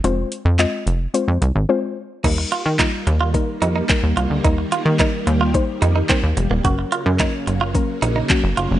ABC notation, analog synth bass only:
X:1
M:4/4
L:1/16
Q:1/4=109
K:Eb
V:1 name="Analog synth bass" clef=bass
F,,,2 z F,,2 z F,,,2 z F,, C,, A,,, z4 | E,,2 z E,2 z E,,3 z F,,2 z E,, C,, D,, | E,,2 z E,2 z E,,3 z F,,2 z E,, F,,, E,,, | _G,,,2 z _G,,2 z G,,,3 z B,,,2 z G,,, G,,, F,,, |]